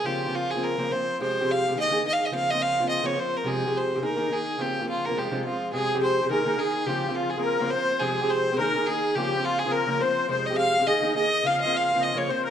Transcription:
X:1
M:4/4
L:1/16
Q:"Swing" 1/4=211
K:Bbdor
V:1 name="Fiddle"
G4 F2 A2 B4 c4 | c4 f4 e4 (3e2 f2 e2 | f2 e2 f4 e2 d2 c2 B2 | A4 c4 B4 A4 |
G4 F2 B2 G4 F4 | A4 c4 B4 A4 | G4 F2 A2 B4 c4 | A4 c4 B4 A4 |
G4 F2 A2 B4 c4 | c2 e2 f4 e4 e4 | f2 e2 f4 e2 d2 c2 B2 |]
V:2 name="Accordion"
z16 | z16 | z16 | z16 |
z16 | A4 c4 B4 A4 | G4 F2 A2 B4 c4 | A4 c4 B4 A4 |
G4 F2 A2 B4 c4 | c2 e2 f4 e4 e4 | f4 f4 e2 d2 c2 B2 |]
V:3 name="Steel-string acoustic guitar"
[D,F,B,CF]3 [D,F,B,CF]4 [D,F,B,CF]3 [D,F,B,CF]2 [F,B,CF]4 | [F,,C,F,A,CG]3 [F,,C,F,A,CG]4 [F,,C,F,A,CG] [E,B,EA]2 [E,B,EA]2 [E,B,EA]4 | [D,F,B,CF]3 [D,F,B,CF]4 [D,F,B,CF]3 [D,F,B,CF]2 [F,B,CF]4 | [F,,C,F,A,CG]3 [F,,C,F,A,CG]4 [F,,C,F,A,CG] [E,B,EA]2 [E,B,EA]2 [E,B,EA]4 |
[D,F,B,CF]3 [D,F,B,CF]4 [D,F,B,CF] [F,,C,F,A,CF]2 [F,,C,F,A,CF]2 [F,A,CF]4 | [F,,C,F,A,CG]3 [F,,C,F,A,CG]4 [F,,C,F,A,CG] [E,B,EA]2 [E,B,EA]2 [E,B,EA]4 | [D,F,B,CF]3 [D,F,B,CF]4 [D,F,B,CF]3 [D,F,B,CF]2 [F,B,CF]4 | [F,,C,F,A,CG]3 [F,,C,F,A,CG]4 [F,,C,F,A,CG] [E,B,EA]2 [E,B,EA]2 [E,B,EA]4 |
[D,F,B,CF]3 [D,F,B,CF]4 [D,F,B,CF]3 [D,F,B,CF]2 [F,B,CF]4 | [F,,C,F,A,CG]3 [F,,C,F,A,CG]4 [F,,C,F,A,CG] [E,B,EA]2 [E,B,EA]2 [E,B,EA]4 | [D,F,B,CF]3 [D,F,B,CF]4 [D,F,B,CF]3 [D,F,B,CF]2 [F,B,CF]4 |]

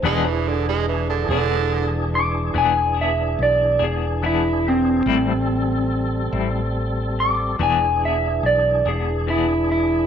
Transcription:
X:1
M:12/8
L:1/16
Q:3/8=48
K:Ephr
V:1 name="Clean electric guitar"
z8 z2 d'2 ^g2 e2 d2 ^G2 E2 C2- | C6 z4 d'2 ^g2 e2 d2 ^G2 E2 E2 |]
V:2 name="Clean electric guitar"
[E,B,D^G]2 z4 [B,DG]2 z4 [E,B,DG]2 [B,DG]2 z2 [B,DG]2 [E,B,DG]2 z2 | [A,,G,CE]2 z4 [G,CE]2 z4 [E,B,D^G]2 [B,DG]2 z2 [B,DG]2 [E,B,DG]2 z2 |]
V:3 name="Tonewheel organ"
[E,D^G]24 | [G,CA]12 [E,D^G]12 |]
V:4 name="Tenor saxophone" clef=bass
^G, E, D, G, E, D, D,3 z12 z3 | z24 |]
V:5 name="Fretless electric bass" clef=bass
E,,,6 E,,,6 E,,,4 B,,,2 E,,,6 | A,,,6 A,,,6 E,,,4 B,,,2 E,,,6 |]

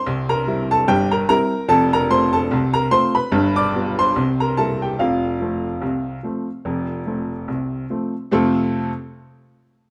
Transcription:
X:1
M:2/4
L:1/16
Q:"Swing 16ths" 1/4=73
K:F
V:1 name="Upright piano"
[cc'] [Bb]2 [Aa] [Gg] [Bb] [Bb]2 | [Aa] [Bb] [cc'] [Aa]2 [Bb] [cc'] [=B=b]- | [=B=b] [dd']2 [cc']2 [_B_b] [Aa] [Gg] | [Ff]8- |
[Ff]4 z4 | [F,,C,A,CFA]2 z6 |]
V:2 name="Upright piano" clef=bass
[C,,C,]2 [G,CE]2 [G,,,G,,]2 [G,CE]2 | [F,,,F,,]2 [A,CF]2 [C,,C,]2 [A,CF]2 | [G,,,G,,]2 [G,=B,F]2 [C,,C,]2 [G,_B,E]2 | [F,,,F,,]2 [F,A,C]2 [C,,C,]2 [F,A,C]2 |
[F,,,F,,]2 [F,A,C]2 [C,,C,]2 [F,A,C]2 | z8 |]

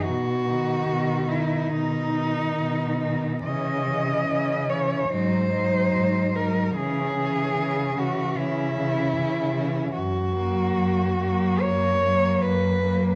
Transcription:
X:1
M:4/4
L:1/8
Q:1/4=73
K:C#dor
V:1 name="Cello"
F3 E D4 | d3 c ^B3 A | G3 F E4 | [K:F#] F4 c2 B2 |]
V:2 name="Cello"
z D2 D2 D2 D | C C2 C D D2 D | C C2 C2 C2 C | [K:F#] z A,2 A,2 A,2 A, |]
V:3 name="Cello" clef=bass
z D,2 D,2 D,2 D, | E, E,2 E, F, F,2 F, | E, E,2 E,2 E,2 E, | [K:F#] z F,2 F,2 F,2 F, |]
V:4 name="Cello" clef=bass
B,,2 B,,2 B,,2 B,,2 | C,2 C,2 G,,2 G,,2 | C,2 C,2 C,2 C,2 | [K:F#] F,,2 F,,2 F,,2 F,,2 |]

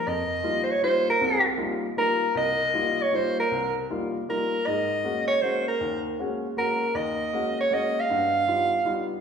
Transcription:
X:1
M:3/4
L:1/16
Q:"Swing" 1/4=157
K:Abmix
V:1 name="Soprano saxophone"
e4- e3/2 c/2 d2 c2 B2- | B2 z6 B4 | e6 d2 c2 B2- | B2 z6 B4 |
e6 d2 c2 B2- | B2 z6 B4 | e6 d2 e2 f2- | f8- f2 z2 |]
V:2 name="Grand piano"
F,,4 [=G,B,EF]2 z2 [G,B,EF]2 z2 | [C,,C,]4 [=G,B,EF]2 z2 [G,B,EF]2 z2 | C,,4 [=G,B,EF]2 z2 [G,B,EF]2 z2 | C,,4 [=G,B,EF]2 z2 [G,B,EF]2 z2 |
[A,,A,]4 [A,B,DG]2 z2 [A,B,DG]2 z2 | E,,4 [A,B,DG]2 z2 [A,B,DG]2 z2 | E,,4 [A,B,DG]2 z2 [A,B,DG]2 z2 | [=G,,=B,]4 [=G,B,^DF]2 z2 [G,B,DF]2 z2 |]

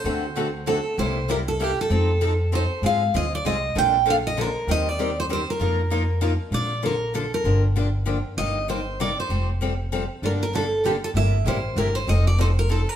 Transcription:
X:1
M:3/4
L:1/8
Q:"Swing" 1/4=195
K:Bb
V:1 name="Steel-string acoustic guitar"
c4 A2 | c2 B A G A- | A4 c2 | f2 e d e2 |
g2 f e B2 | e d2 c c B- | B4 z2 | d2 B2 A B- |
B z4 z | e2 c2 d c- | c z4 z | B B A2 G A |
=e2 c2 B c | e d c B A B |]
V:2 name="Steel-string acoustic guitar"
[D,A,C^FA] z [D,A,CFA] z [D,A,CFA] z | [C,G,B,=EG] z [C,G,B,EG] z [C,G,B,EG] z | [F,CEA] z [F,CEA] z [F,CEA] z | [_A,CF_A] z [A,CFA] z [A,CFA] z |
[D,F,B,DA] z [D,F,B,DA] z [D,F,B,DA] z | [E,G,CGB] z [E,G,CGB] z [E,G,CGB] z | [F,B,EFB] z [F,B,EFB] z [F,B,EFB] z | [D,F,B,DA] z [D,F,B,DA] z [D,F,B,DA] z |
[D,F,B,DG] z [D,F,B,DG] z [D,F,B,DG] z | [C,G,B,EG] z [C,G,B,EG] z [C,G,B,EG] z | [F,G,CGA] z [F,G,CGA] z [F,G,CGA] z | [D,G,B,DA] z [D,G,B,DA] z [D,G,B,DA] z |
[C,G,B,=EG] z [C,G,B,EG] z [C,G,B,EG] z | [F,CEA] z [F,CEA] z [F,CEA] z |]
V:3 name="Steel-string acoustic guitar"
[D,A,C^FA] z [D,A,CFA] z [D,A,CFA] z | [C,G,B,=EG] z [C,G,B,EG] z [C,G,B,EG] z | [F,CEA] z [F,CEA] z [F,CEA] z | [_A,CF_A] z [A,CFA] z [A,CFA] z |
[D,F,B,DA] z [D,F,B,DA] z [D,F,B,DA] z | [E,G,CGc] z [E,G,CGc] z [E,G,CGc] z | [F,B,EFB] z [F,B,EFB] z [F,B,EFB] z | z6 |
z6 | z6 | z6 | [D,G,B,DA] z [D,G,B,DA] z [D,G,B,DA] z |
[C,G,B,=EG] z [C,G,B,EG] z [C,G,B,EG] z | [F,CEA] z [F,CEA] z [F,CEA] z |]
V:4 name="Upright bass" clef=bass
D,,6 | C,,6 | F,,6 | _A,,2 D,,2 C,,2 |
B,,,6 | E,,6 | F,,6 | B,,,6 |
G,,,6 | G,,,6 | F,,,6 | G,,,6 |
G,,,2 A,,,2 G,,,2 | F,,,6 |]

